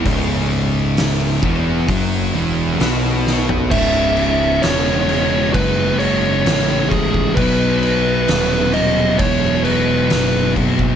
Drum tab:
CC |----------------|x-x-x-x-x-x-x-x-|x-x-x-x-x-x-x-x-|
HH |o---o---o---o---|----------------|----------------|
SD |----o-------o-o-|----o-------o---|----o-------o---|
FT |---------------o|----------------|----------------|
BD |o-----o-o-------|o-------o-----oo|o-------o-----oo|